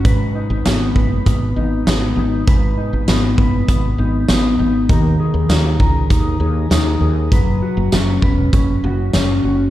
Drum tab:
HH |x-x-x-x-|x-x-x-x-|x-x-x-x-|x-x-x-x-|
TB |--x---x-|--x---x-|--x---x-|--x---x-|
SD |--o---o-|--o---o-|--o---o-|--o---o-|
BD |o--oo---|o--oo---|o--oo---|o--oo---|